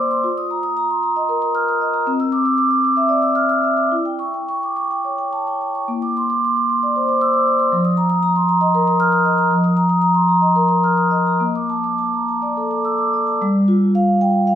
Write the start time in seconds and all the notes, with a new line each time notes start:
Already playing: A#3 C5 D5 C6 D6 E6
0.11 C6
0.24 F4
0.38 D#6
0.50 A#5
0.63 D#6
0.77 A#5
0.90 C6
1.03 A#5
1.16 D#5
1.29 A#4
1.42 D#6
1.55 F6
1.69 D#6
1.81 D#5
1.94 A#5
2.07 C4
2.20 E6
2.32 D6
2.45 E6
2.58 D6
2.71 E6
2.84 D6
2.97 E5
3.09 D5
3.22 E6
3.35 F6
3.49 E6
3.64 E5
3.77 D6
3.92 E4
4.05 G5
4.19 C#6
4.34 G5
4.49 C#6
4.63 D6
4.77 C#6
4.91 G5
5.05 C#5
5.18 G5
5.33 A5
5.47 G5
5.61 G5
5.75 C#6
5.88 A#3
6.02 D6
6.17 C6
6.30 D6
6.45 C6
6.57 D6
6.70 C6
6.83 D5
6.96 C5
7.08 D6
7.21 E6
7.34 D6
7.47 D5
7.59 C6
7.72 F3
7.85 D#6
7.97 A#5
8.10 D#6
8.23 A#5
8.36 C6
8.49 A#5
8.61 D#5
8.75 A#4
8.87 D#6
9.00 F6
9.12 D#6
9.25 D#5
9.38 A#5
9.51 F3
9.64 D#6
9.77 A#5
9.89 D#6
10.02 A#5
10.15 C6
10.29 A#5
10.42 D#5
10.56 A#4
10.68 D#6
10.84 F6
10.97 D#6
11.11 D#5
11.27 A#5
11.40 A#3
11.55 D6
11.70 A5
11.84 D6
11.98 A5
12.14 A#5
12.29 A5
12.42 D5
12.57 A4
12.71 D6
12.85 E6
12.98 D6
13.13 D5
13.27 A5
13.42 G3
13.68 F4
13.95 F5
14.21 G5
14.47 F5